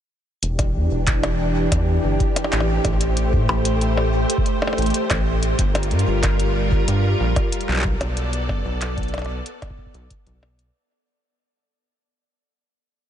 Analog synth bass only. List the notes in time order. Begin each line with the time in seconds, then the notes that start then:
0.43 E1
0.75 E2
0.91 E1
1.72 E2
2.04 G1
2.52 A1
2.85 A1
3.33 A2
3.49 A1
4.78 A1
5.10 A1
5.59 G1
5.91 G2
6.07 G1
6.88 G2
7.20 A#1
7.68 B1
8.01 B1
8.49 F#1
8.65 B1
9.94 B1
10.27 B1